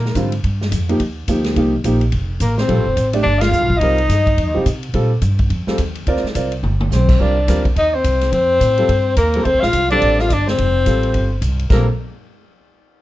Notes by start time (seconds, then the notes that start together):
Already playing: A#2 A#3 A#4
0.06 snare
0.15 G#2 D3 G3 C4 F4, kick, hi-hat pedal, ride
0.32 ride
0.44 G2, kick, ride
0.61 snare
0.72 F2, kick, hi-hat pedal, ride
0.89 F3 A#3 D#4 G4, ride
0.99 D#2, kick, ride
1.28 D2 F3 A#3 D#4 G4, kick, hi-hat pedal, ride
1.44 snare, ride
1.56 C2 F3 A#3 D#4 G4, kick, ride
1.84 A#1 F3 A#3 D#4 G4, kick, hi-hat pedal, ride
2.01 ride
2.12 F1, kick, ride
2.40 A1 A#3 A#4, kick, hi-hat pedal, ride
2.58 C4 C5, snare
2.68 A#1 G3 C4 F4 A4, kick, ride
2.77 A1
2.87 F1
2.96 A1, kick, hi-hat pedal, ride
3.13 A3 D4 G4 D5, ride
3.22 G1 D4 D5, kick
3.39 F4 F5, snare, ride
3.51 D2, hi-hat pedal
3.61 B1
3.70 G1, kick
3.77 C2 D#4 D#5
3.81 G3 C4 F4 A#4, kick, ride
3.98 ride
4.09 G2, kick, snare, hi-hat pedal, ride
4.27 kick, ride
4.37 F2, kick, ride
4.47 D#2
4.55 C2 G3 C4 F4 G4
4.66 C3, kick, hi-hat pedal, ride
4.83 ride
4.94 A#2 G3 C4 F4 A4, kick, ride
5.22 G2, kick, hi-hat pedal, ride
5.39 kick, ride
5.50 F2, kick, ride
5.67 G3 C4 F4 A4, muted upright bass stroke, snare
5.78 D#2, kick, hi-hat pedal, ride
5.95 ride
6.07 D2 C4 F4 A#4 D5, kick, ride
6.16 snare
6.23 muted upright bass stroke, snare
6.35 C2 C4 F4 A#4 D5, kick, hi-hat pedal, ride
6.52 ride
6.63 G1, mid tom
6.80 mid tom
6.90 B1 C5, snare, hi-hat pedal
6.95 C4
7.09 kick, crash
7.20 C2 G3 C4 D4 F4 A#4 D5
7.48 D2 G3 C4 F4 A#4, kick, snare, hi-hat pedal, ride
7.65 kick, ride
7.76 D#2 D#4 D#5, kick, ride
7.94 C4 C5
8.04 C2, kick, hi-hat pedal, ride
8.21 snare, ride
8.32 F2 C4 C5, kick, ride
8.60 A2, kick, hi-hat pedal, ride
8.77 G3 C4 F4 A4, ride
8.88 G2, kick, ride
9.16 D#2 A#3 A#4, kick, hi-hat pedal, ride
9.34 G3 C4 F4 A4, ride
9.43 D2 C4 C5, kick, ride
9.54 C2
9.60 A1 F4 F5, snare
9.73 C2, kick, hi-hat pedal, ride
9.90 G3 C4 D4 F4 A4 D5, ride
10.02 A1, kick, ride
10.19 F4 F5, snare
10.29 G1 D4 D5, kick, hi-hat pedal, ride
10.47 C4 C5, snare
10.58 F1, kick, ride
10.86 A1 G3 C4 F4 A4, kick, hi-hat pedal, ride
11.03 ride
11.14 G1, kick, ride
11.42 C2, kick, hi-hat pedal, ride
11.59 ride
11.70 A#1 G3 A#3 C4 F4 A4 A#4, kick, snare, crash